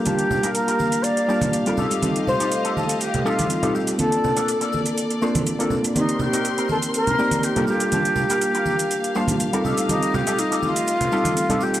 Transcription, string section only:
\new Staff \with { instrumentName = "String section" } { \time 4/4 \key g \minor \tempo 4 = 122 << { f''1~ | f''1 | d''1 | c'''2.~ c'''8 f''8~ |
f''1~ | f''1 | } \\ { <bes g'>2.~ <bes g'>8 <a ees''>8~ | <a ees''>1 | <bes a'>1 | <c' bes'>2.~ <c' bes'>8 <bes g'>8~ |
<bes g'>2.~ <bes g'>8 <a ees''>8~ | <a ees''>1 | } >> }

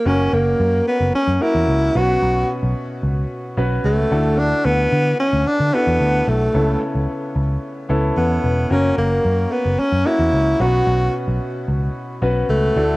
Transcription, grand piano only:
\new Staff \with { instrumentName = "Grand piano" } { \time 4/4 \key b \minor \tempo 4 = 111 <ais cis' fis' ais'>4. r4 <ais cis' fis' ais'>4 <b, b cis' fis' b'>8~ | <b, b cis' fis' b'>4 r4. <b cis' fis' b'>4 <d d' e' fis' a'>8~ | <d d' e' fis' a'>4 r4. <d' e' fis' a'>4 r8 | <cis b cis' e' a'>4. r4 <b cis' e' a'>4 r8 |
<ais cis' fis' ais'>4. r4 <ais cis' fis' cis''>4 <b, b cis' fis' b'>8~ | <b, b cis' fis' b'>4 r4. <b cis' fis' b'>4 <d d' e' fis' a'>8 | }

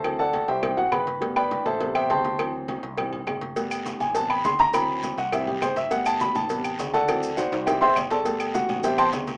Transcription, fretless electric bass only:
\new Staff \with { instrumentName = "Fretless electric bass" } { \clef bass \time 4/4 \key g \major \tempo 4 = 204 d,4. c,4 a,,8 g,,4~ | g,,4. a,,4. d,4~ | d,4. c,4. g,,4~ | g,,4. a,,4. d,4~ |
d,4. c,4. g,,4~ | g,,4. a,,4. d,4~ | d,4. c,4 a,,8 g,,4~ | g,,4. a,,4. d,4 | }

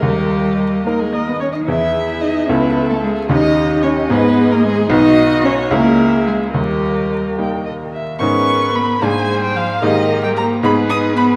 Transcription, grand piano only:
\new Staff \with { instrumentName = "Grand piano" } { \time 6/8 \key gis \minor \tempo 4. = 74 dis,4. <ais dis' ais'>4. | <e, b e' gis'>4. <cis, cis' e' a'>4. | <dis, cis' dis' g'>4. <gis, b dis' gis'>4. | <b,, b dis' fis'>4. <cis, gis cis' e'>4. |
dis,4. <g ais dis'>4. | <gis, gis b dis'>4. <gis, ais d' gis'>4. | <gis, ais dis' g'>4. <gis, b dis' gis'>4. | }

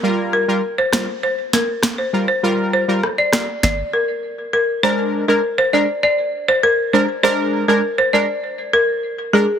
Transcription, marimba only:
\new Staff \with { instrumentName = "Marimba" } { \time 4/4 \key bes \mixolydian \tempo 4 = 100 r8 bes'16 r8 c''16 c''16 r16 c''16 r16 bes'16 r8 c''16 r16 c''16 | r8 c''16 r8 d''16 d''16 r16 d''16 r16 bes'16 r8. bes'16 r16 | c''16 r8 bes'16 r16 c''16 d''16 r16 d''16 r8 c''16 bes'16 r16 c''16 r16 | c''16 r8 bes'16 r16 c''16 d''16 r8. bes'16 r8. aes'16 r16 | }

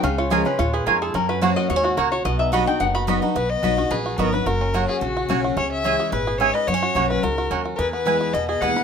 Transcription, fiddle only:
\new Staff \with { instrumentName = "Fiddle" } { \time 4/4 \key b \major \tempo 4 = 217 r1 | r1 | r1 | b'8 dis''4. gis'4 ais'8 b'8 |
ais'4. gis'8 fis'4. r8 | cis''8 e''4. b'4 cis''8 dis''8 | cis''4. b'8 ais'4. r16. ais'32 | b'8 b'4. dis''8 dis''8 fis''4 | }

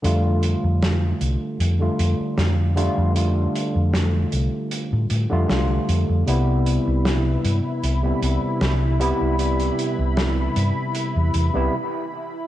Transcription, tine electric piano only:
\new Staff \with { instrumentName = "Tine electric piano" } { \clef bass \time 4/4 \key f \lydian \tempo 4 = 77 <d g a f'>2~ <d g a f'>16 <d g a f'>4~ <d g a f'>16 <d g a f'>8 | <d g a f'>2~ <d g a f'>8. <d g a f'>4~ <d g a f'>16 | <c g b e'>2~ <c g b e'>16 <c g b e'>4~ <c g b e'>16 <c g b e'>8 | <c g b e'>2~ <c g b e'>8. <c g b e'>16 r4 | }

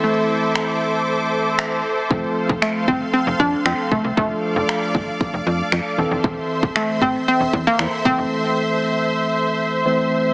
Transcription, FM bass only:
\new Staff \with { instrumentName = "FM bass" } { \clef bass \time 4/4 \key a \phrygian \tempo 4 = 116 r1 | f,,8 r16 f,,16 r8 g,,8 r16 f,,16 f,8 f,16 r16 c,16 c,16 | f,,8 r16 f,,16 r8 g,,8 r16 f,,16 f,8 f,16 r16 e,,16 f,,16 | e,,8 r16 e,,16 r8 a,,8 r16 e,,16 e,8 e,16 r16 c,16 f,,16 |
r1 | }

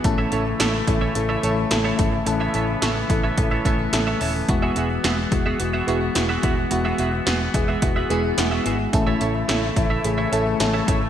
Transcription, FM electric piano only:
\new Staff \with { instrumentName = "FM electric piano" } { \time 4/4 \key a \lydian \tempo 4 = 108 << { r1 | r2. e''4 | r1 | r1 |
r1 | } \\ { <a cis' e' a'>8 <a cis' e' a'>8 <a cis' e' a'>8 <a cis' e' a'>8 <a cis' e' a'>8 <a cis' e' a'>8 <a cis' e' a'>8 <a cis' e' a'>8 | <a cis' e' a'>8 <a cis' e' a'>8 <a cis' e' a'>8 <a cis' e' a'>8 <a cis' e' a'>8 <a cis' e' a'>8 <a cis' e' a'>8 <a cis' e' a'>8 | <gis b e' fis'>8 <gis b e' gis'>8 <gis b e' fis'>8 <gis b e' fis'>8 <gis b e' fis'>8 <gis b e' fis'>8 <gis b e' fis'>8 <gis b e' fis'>8 | <gis b e' fis'>8 <gis b e' fis'>8 <gis b e' fis'>8 <gis b e' gis'>8 <gis b e' fis'>8 <gis b e' gis'>8 <gis b e' fis'>8 <gis b e' gis'>8 |
<a cis' e' a'>8 <a cis' e' a'>8 <a cis' e' a'>8 <a cis' e' a'>8 <a cis' e' gis'>8 <a cis' e' a'>8 <a cis' e' a'>8 <a cis' e' a'>8 | } >> }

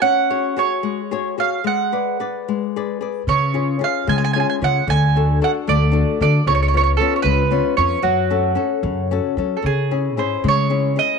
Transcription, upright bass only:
\new Staff \with { instrumentName = "Upright bass" } { \clef bass \time 6/8 \key fis \minor \tempo 4. = 75 r2. | r2. | cis4. cis4 cis8 | d,4. d,4 d8 |
cis,4. cis,4 eis,8 | fis,4. fis,4 fis8 | \key cis \minor cis4 gis,8 cis4. | }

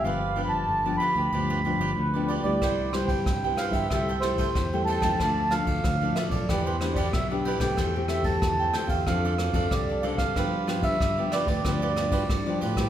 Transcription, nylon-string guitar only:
\new Staff \with { instrumentName = "Nylon-string guitar" } { \time 4/4 \key g \mixolydian \tempo 4 = 93 << { <f b d'>16 r16 <f b d'>8 r16 <f b d'>8. <f b d'>8 <f b d'>8. <f b d'>8 <g b e'>16~ | <g b e'>8 <g e'>8 r16 <g b e'>8. <g a e'>16 r16 <g a e'>8 r16 <g a e'>8 <f a d'>16~ | <f a d'>8 <f a d'>8 r16 <f a d'>8. <b d' g'>16 r16 <b d' g'>8 r16 <b d' g'>8 <a c' g'>16~ | <a c' g'>16 <a c' g'>8 <a c' g'>8. <a c' g'>8 <c' d' a'>8 r16 <c' d' a'>8. <c' d' a'>8 |
<f b d'>16 r16 <f b d'>8 r16 <f b d'>8. <f b d'>16 r16 <f b d'>8. <f b d'>8 <g c' e'>16 | } \\ { g,4 d4 g,4 d4 | c4 g,4 c4 c4 | d4 a,4 e4 b,4 | e4 e4 f4 c4 |
g,4 d4 g,4 d4 | } >> }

